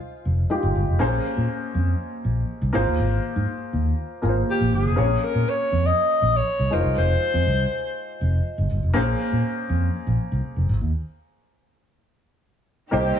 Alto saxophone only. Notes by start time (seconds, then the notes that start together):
4.50 G4
4.75 G#4
5.23 A#4
5.49 C#5
5.86 D#5
6.36 C#5
6.73 A#4
6.98 C5